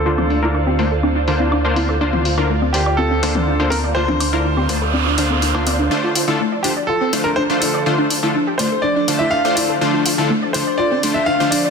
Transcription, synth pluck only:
\new Staff \with { instrumentName = "Synth pluck" } { \time 4/4 \key d \minor \tempo 4 = 123 f'16 d'16 d'16 e'16 d'16 g'16 a16 a'16 d'16 d'16 d'16 e'16 d'16 d''16 e'16 a'16 | d'16 f'16 f'16 e'16 a16 d''16 d'16 d''16 f'16 c'16 d'16 d'16 d'16 d'16 r16 d''16 | f'16 d'16 d'16 e'16 d'16 g'16 a16 a'16 d'16 d'16 d'16 a'16 d'16 d'16 d''16 d'16 | d'16 f'16 f'16 e'16 a16 d''16 d'16 d''16 f'16 c'16 d'16 d'16 d'16 d'16 d'16 d''16 |
f'16 d'16 d'16 e'16 d'16 g'16 a16 a'16 d'16 d'16 d'16 e'16 d'16 d''16 e'16 a'16 | d'16 f'16 f'16 e'16 a16 d''16 d'16 d''16 f'16 c'16 d'16 d'16 d'16 d'16 d'16 d''16 | }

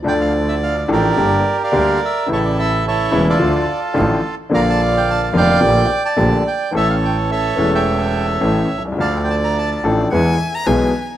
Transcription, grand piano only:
\new Staff \with { instrumentName = "Grand piano" } { \clef bass \time 4/4 \key d \minor \tempo 4 = 108 <d, d f a d' a'>4. <a,, a, f a d' a'>8 <g,, g, d g bes g'>8 r8 <d, d g bes g'>8 r8 | <a,, a, cis e a e'>4. <e,, e, cis e a e'>8 <d, d f a f'>8 r8 <a,, a, d f a f'>8 r8 | <bes,, bes, d f bes f'>4. <f,, f, d f bes f'>8 <bes,, bes, d a bes g'>8 r8 <bes,, bes, d a bes g'>8 r8 | <a,, a, e a cis' a'>4. <e,, e, e a cis' a'>4. <a,, a, e a cis' a'>8 r32 b,,32 c,32 cis,32 |
<d, d f a d' a'>4. <a,, a, f a d' a'>8 <e, e gis b gis'>8 r8 <b,, b, e gis b gis'>8 r8 | }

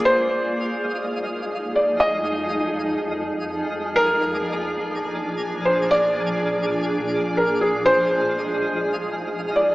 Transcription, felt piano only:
\new Staff \with { instrumentName = "Felt piano" } { \time 4/4 \key f \dorian \tempo 4 = 123 c''2 r4. d''8 | ees''2 r2 | bes'2 r4. c''8 | d''2 r4 bes'8 aes'8 |
c''2 r4. d''8 | }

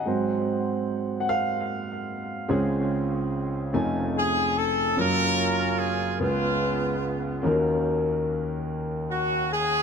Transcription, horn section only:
\new Staff \with { instrumentName = "Horn section" } { \time 6/8 \key des \major \tempo 4. = 49 << { r2. | r2 gis'8 a'8 | bes'4 aes'8 f'4 r8 | r2 ges'8 aes'8 | } \\ { r2. | r2. | <des' f'>4. <aes ces'>4. | r2. | } >> }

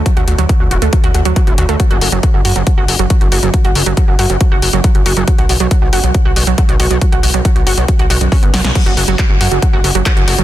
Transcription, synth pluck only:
\new Staff \with { instrumentName = "Synth pluck" } { \time 4/4 \key b \lydian \tempo 4 = 138 fis16 fis'16 fis'16 fis16 fis16 fis'16 fis'16 a16 fis16 fis'16 fis'16 fis16 fis16 fis'16 fis'16 a16 | fis16 fis'16 fis'16 fis16 fis16 fis'16 fis'16 fis16 fis16 fis'16 fis'16 fis16 fis16 fis'16 fis'16 fis16 | fis16 fis'16 fis'16 fis16 fis16 fis'16 fis'16 fis16 fis16 fis'16 fis'16 fis16 fis16 fis'16 fis'16 fis16 | fis16 fis'16 fis'16 fis16 fis16 fis'16 fis'16 fis16 fis16 fis'16 fis'16 fis16 fis16 fis'16 fis'16 fis16 |
fis16 fis'16 fis'16 fis16 fis16 fis'16 fis'16 fis16 fis16 fis'16 fis'16 fis,16 cis'16 b16 fis16 cis16 | fis16 fis'16 fis'16 fis16 r16 fis'16 fis'16 fis16 fis16 fis'16 fis'16 fis16 fis16 fis'16 fis'16 fis16 | }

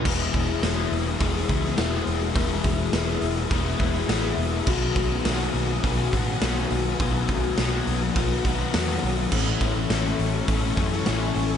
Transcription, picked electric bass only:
\new Staff \with { instrumentName = "Picked electric bass" } { \clef bass \time 4/4 \key e \major \tempo 4 = 104 e,,8 e,,8 e,,8 e,,8 e,,8 cis,8 e,,8 e,,8 | e,,8 e,,8 e,,8 e,,8 e,,8 e,,8 a,,8 e,,8 | b,,8 b,,8 b,,8 b,,8 b,,8 a,8 b,,8 b,,8 | b,,8 b,,8 b,,8 b,,8 b,,8 b,,8 e,8 b,,8 |
a,,8 a,,8 a,,8 a,,8 a,,8 fis,8 a,,8 a,,8 | }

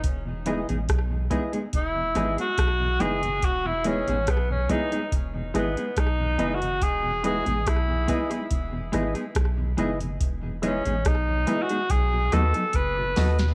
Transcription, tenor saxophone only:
\new Staff \with { instrumentName = "Tenor saxophone" } { \time 4/4 \key e \major \tempo 4 = 71 r2 e'8. fis'8. gis'8 | fis'16 e'16 cis'8 b16 cis'16 dis'8 r8 b8 \tuplet 3/2 { dis'4 fis'8 } | gis'8 gis'8 e'4 r2 | r8 cis'8 \tuplet 3/2 { dis'4 fis'8 } gis'8 a'8 b'4 | }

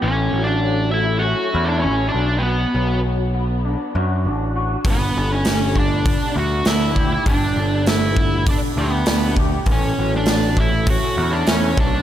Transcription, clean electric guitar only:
\new Staff \with { instrumentName = "Clean electric guitar" } { \time 4/4 \key a \mixolydian \tempo 4 = 100 a,8 fis8 fis8 a8 cis'8 e'8 cis'8 b,8 | b,8 fis8 fis8 b8 d'8 fis'8 d'8 fis'8 | g,8 d8 g8 b8 d'4 d'8 g'8 | g,8 d8 g8 b8 d'8 g'8 d'8 g'8 |
a,8 fis8 fis8 a8 cis'8 e'8 cis'8 b,8 | }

